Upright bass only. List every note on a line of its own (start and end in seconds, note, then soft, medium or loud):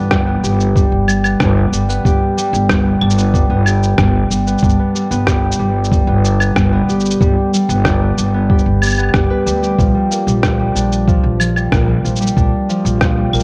0.00 0.39 G1 medium
0.43 0.87 G1 medium
0.92 1.36 G1 medium
1.40 1.67 G1 loud
1.72 1.99 G1 medium
2.05 2.18 G1 medium
2.53 2.97 G1 loud
3.01 3.45 G1 medium
3.50 3.94 G1 medium
3.98 4.25 G1 loud
4.30 4.57 G1 medium
4.62 4.76 G1 loud
5.11 5.55 G1 loud
5.59 6.03 G1 medium
6.07 6.51 G1 medium
6.56 6.83 G1 loud
6.88 7.15 G1 medium
7.21 7.34 G1 loud
7.69 8.13 G1 loud
8.17 8.61 G1 medium
8.66 9.10 G1 medium
9.14 9.28 G1 medium
9.46 9.73 D2 medium
9.79 9.92 A#1 medium
10.27 10.71 A#1 medium
10.75 11.19 A#1 medium
11.24 11.68 A#1 medium
11.72 11.99 A#1 loud
12.05 12.31 A#1 medium
12.37 12.50 A#1 medium
12.85 13.29 A#1 loud
13.33 13.43 A#1 medium